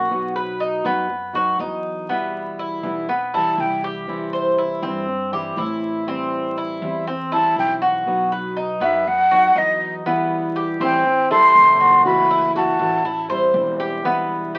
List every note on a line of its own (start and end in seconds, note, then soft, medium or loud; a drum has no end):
0.00 0.79 B1 medium
0.00 0.10 A#3 medium
0.00 0.11 C#4 medium
0.00 0.11 F#4 medium
0.00 0.34 F#4 medium
0.10 0.84 B2 medium
0.10 0.84 F#3 medium
0.10 0.85 B3 medium
0.10 0.83 D#4 medium
0.10 0.83 F#4 medium
0.36 0.60 B4 medium
0.60 0.85 D#4 medium
0.84 1.56 F#2 medium
0.84 1.09 F#3 medium
0.84 1.09 B3 medium
0.84 1.34 B3 medium
0.84 1.09 D#4 medium
0.84 1.09 F#4 medium
1.10 muted steel-string acoustic guitar stroke medium
1.33 1.57 F#3 medium
1.33 1.58 B3 medium
1.33 1.58 D#4 medium
1.33 1.58 F#4 medium
1.33 1.59 F#4 medium
1.59 2.77 E2 medium
1.59 2.08 F#3 medium
1.59 2.08 B3 soft
1.59 2.09 D#4 medium
1.59 2.08 D#4 medium
1.59 2.09 F#4 medium
2.09 2.83 B2 medium
2.09 2.85 E3 medium
2.09 2.84 G3 medium
2.09 2.58 B3 medium
2.09 2.83 B3 medium
2.09 2.83 E4 medium
2.59 3.07 E4 medium
2.83 3.54 B1 medium
2.83 3.08 E3 medium
2.83 3.08 G3 medium
2.83 3.08 B3 medium
2.83 3.08 E4 medium
3.09 3.33 B3 medium
3.09 muted steel-string acoustic guitar stroke medium
3.34 3.57 E3 medium
3.34 3.57 G3 medium
3.34 3.58 B3 medium
3.34 3.82 E4 medium
3.34 3.58 E4 medium
3.34 3.62 A5 loud
3.58 4.76 C2 medium
3.58 4.07 E3 soft
3.58 4.07 G3 medium
3.58 4.08 B3 medium
3.58 4.08 E4 medium
3.58 3.84 G5 medium
3.84 4.32 G4 medium
4.07 4.82 C3 medium
4.07 4.84 E3 medium
4.07 4.83 G3 medium
4.07 4.83 C4 medium
4.07 4.82 E4 medium
4.33 4.57 C5 medium
4.58 4.82 E4 medium
4.82 5.53 G2 medium
4.82 5.07 E3 medium
4.82 5.07 G3 medium
4.82 5.31 C4 medium
4.82 5.07 C4 medium
4.82 5.07 E4 medium
5.08 muted steel-string acoustic guitar stroke medium
5.33 5.56 E3 medium
5.33 5.57 G3 medium
5.33 5.57 C4 medium
5.33 5.57 E4 medium
5.33 5.57 G4 medium
5.57 6.75 A2 medium
5.57 6.06 E3 soft
5.57 6.06 G3 soft
5.57 6.07 C4 medium
5.57 6.06 E4 medium
5.57 6.07 E4 medium
6.07 6.81 E3 medium
6.07 6.81 G3 medium
6.07 6.56 C4 medium
6.07 6.81 C4 medium
6.07 6.81 E4 medium
6.58 7.06 E4 medium
6.82 7.53 E2 loud
6.82 7.06 G3 medium
6.82 7.07 C4 medium
6.82 7.06 E4 medium
7.07 7.31 C4 medium
7.07 muted steel-string acoustic guitar stroke medium
7.32 7.57 G3 medium
7.32 7.57 C4 medium
7.32 7.80 E4 medium
7.32 7.56 E4 medium
7.32 7.56 A5 loud
7.56 8.75 B1 medium
7.56 8.06 E3 medium
7.56 8.06 G3 medium
7.56 8.07 C4 medium
7.56 8.07 E4 medium
7.56 7.73 G5 medium
7.82 8.30 F#4 medium
8.06 8.80 B2 medium
8.06 8.81 F#3 medium
8.06 8.81 B3 medium
8.06 8.81 D#4 medium
8.06 8.81 F#4 medium
8.32 8.56 B4 medium
8.57 8.81 D#4 medium
8.80 9.52 F#2 medium
8.80 9.06 F#3 medium
8.80 9.30 B3 medium
8.80 9.06 B3 medium
8.80 9.06 D#4 medium
8.80 9.06 F#4 medium
8.80 9.09 E5 loud
9.07 9.60 F#5 loud
9.07 muted steel-string acoustic guitar stroke medium
9.31 9.54 F#3 medium
9.31 9.55 B3 medium
9.31 9.55 D#4 medium
9.31 9.55 F#4 medium
9.55 10.74 E2 medium
9.55 10.05 F#3 medium
9.55 10.05 B3 medium
9.55 10.04 D#4 medium
9.55 10.05 D#4 medium
9.55 10.06 F#4 medium
9.55 9.95 D#5 medium
10.05 10.79 B2 medium
10.05 10.82 E3 medium
10.05 10.80 G3 medium
10.05 10.54 B3 medium
10.05 10.79 B3 medium
10.05 10.79 E4 medium
10.56 10.80 G4 medium
10.80 11.51 A1 medium
10.80 11.05 E3 medium
10.80 11.05 G3 medium
10.80 11.05 B3 medium
10.80 11.29 C4 medium
10.80 11.04 E4 medium
10.80 11.29 G5 loud
11.06 muted steel-string acoustic guitar stroke medium
11.30 11.55 G3 medium
11.30 11.55 C4 medium
11.30 11.54 E4 medium
11.30 11.79 E4 medium
11.30 12.02 A4 medium
11.30 12.02 C6 loud
11.55 12.73 F#1 loud
11.55 12.04 E3 medium
11.55 12.05 G3 medium
11.55 12.05 C4 medium
11.80 12.29 F#4 medium
12.05 12.79 C3 medium
12.05 12.81 E3 medium
12.05 12.80 A3 medium
12.05 12.80 E4 medium
12.05 12.78 F#4 medium
12.05 12.52 B5 loud
12.31 12.55 E4 medium
12.56 13.04 F#4 medium
12.56 13.26 F#4 medium
12.56 13.27 A5 medium
12.79 13.50 A1 loud
12.79 13.04 E3 medium
12.79 13.04 A3 medium
12.79 13.04 E4 medium
12.79 13.04 F#4 medium
13.05 13.29 E4 medium
13.05 muted steel-string acoustic guitar stroke medium
13.30 13.54 G3 medium
13.30 13.54 C4 medium
13.30 13.54 E4 medium
13.30 13.78 C5 medium
13.54 14.59 E1 loud
13.54 14.03 E3 medium
13.54 14.04 G3 medium
13.54 14.04 C4 medium
13.54 14.04 E4 medium
13.80 14.04 G4 medium
14.04 14.59 B2 medium
14.04 14.59 E3 medium
14.04 14.59 G3 medium
14.04 14.53 B3 medium
14.04 14.59 B3 medium
14.04 14.59 E4 medium
14.55 14.59 G4 medium